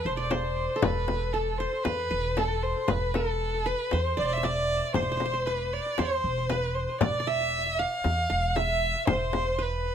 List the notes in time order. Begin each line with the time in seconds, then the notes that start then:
Already playing: A4 B4
0.05 E1 C5
0.17 D5
0.31 C5, frame drum
0.76 A4
0.82 E1 B4, frame drum
1.08 frame drum
1.33 A4
1.58 C5
1.83 E2 B4, frame drum
2.11 E1 B4
2.37 A4, frame drum
2.63 C5
2.88 E1 B4, frame drum
3.14 A4, frame drum
3.66 B4
3.91 E2 C5, frame drum
4.17 E1 D5
4.22 C5
4.27 D5
4.33 E5
4.37 E5
4.43 D5, frame drum
4.94 E1 C5, frame drum
5.02 C5
5.12 C5
5.17 C5, frame drum
5.26 C5
5.34 C5
5.46 B4
5.73 D5
5.98 E2 C5, frame drum
6.24 E1
6.50 B4, frame drum
6.75 C5
7.01 E1 D5, frame drum
7.20 D5
7.27 E5
7.79 F5
8.04 E2, frame drum
8.30 E1 F5
8.56 E5, frame drum
9.07 E1 C5, frame drum
9.33 frame drum
9.59 B4